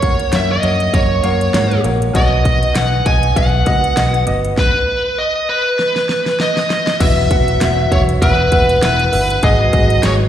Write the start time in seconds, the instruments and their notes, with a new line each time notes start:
Already playing: fingered electric bass F#2, upright piano A#3 F#4 C#5, lead electric guitar C#5
0.02 upright piano A#3 F#4 C#5, kick, closed hi-hat
0.20 closed hi-hat
0.32 fingered electric bass F#2, upright piano A#3 F#4 C#5, lead electric guitar E5, snare, closed hi-hat
0.52 lead electric guitar D#5
0.62 fingered electric bass F#2, upright piano A#3 F#4 C#5, closed hi-hat
0.80 closed hi-hat
0.93 fingered electric bass F#2, upright piano A#3 F#4 D#5, lead electric guitar C#5, kick, closed hi-hat
1.23 fingered electric bass F#2, upright piano A#3 F#4 C#5, closed hi-hat
1.41 closed hi-hat
1.54 fingered electric bass G#2, upright piano A#3 F#4 C#5, snare, closed hi-hat
1.71 closed hi-hat
1.84 fingered electric bass A#1, upright piano A#3 F#4 C#5, closed hi-hat
2.02 closed hi-hat
2.13 fingered electric bass B1, upright piano B2 B3 F#4 D#5, lead electric guitar D#5, kick, closed hi-hat
2.44 upright piano B3 F#4 D#5, kick, closed hi-hat
2.63 closed hi-hat
2.75 fingered electric bass B1, upright piano B3 F#4 D#5, lead electric guitar F#5, snare, closed hi-hat
3.05 fingered electric bass B1, upright piano B3 F#4 D#5, lead electric guitar G#5, kick, closed hi-hat
3.23 closed hi-hat
3.36 fingered electric bass B1, upright piano B3 F#4 D#5, lead electric guitar F#5, kick, closed hi-hat
3.65 fingered electric bass C#2, upright piano B3 F#4 D#5, kick, closed hi-hat
3.84 closed hi-hat
3.96 fingered electric bass B1, upright piano B3 F#4 D#5, snare, closed hi-hat
4.14 closed hi-hat
4.26 fingered electric bass G1, upright piano B3 F#4 D#5, closed hi-hat
4.45 closed hi-hat
4.57 lead electric guitar B4, kick, snare
5.18 lead electric guitar D#5
5.49 lead electric guitar B4
5.79 snare
5.96 snare
6.09 snare
6.26 snare
6.40 lead electric guitar D#5, snare
6.57 snare
6.70 snare
6.87 snare
7.00 fingered electric bass E1, upright piano E3 B3 F#4 E5, french horn section F#3 F#4, lead electric guitar E5, kick, closed hi-hat, crash
7.30 fingered electric bass E1, upright piano B3 F#4 F#5, kick, closed hi-hat
7.48 closed hi-hat
7.60 fingered electric bass E1, upright piano B3 F#4 E5, snare, closed hi-hat
7.91 fingered electric bass E1, upright piano B3 F#4 E5, lead electric guitar C#5, kick, closed hi-hat
8.09 closed hi-hat
8.22 fingered electric bass E1, upright piano B3 F#4 E5, lead electric guitar B4, kick, closed hi-hat
8.52 fingered electric bass E1, upright piano B3 F#4 E5, kick, closed hi-hat
8.69 closed hi-hat
8.82 fingered electric bass E1, french horn section E3 E4, upright piano B3 F#4 E5, lead electric guitar B4, snare, closed hi-hat
8.99 closed hi-hat
9.12 fingered electric bass G1, upright piano B3 F#4 E5, open hi-hat
9.30 closed hi-hat
9.43 fingered electric bass G#1, upright piano G#2 B3 G#4 D#5, french horn section F#3 F#4, lead electric guitar D#5, kick, closed hi-hat
9.72 fingered electric bass G#1, upright piano B3 G#4 D#5, kick, closed hi-hat
9.90 closed hi-hat
10.03 fingered electric bass G#1, upright piano B3 G#4 D#5, lead electric guitar C#5, snare, closed hi-hat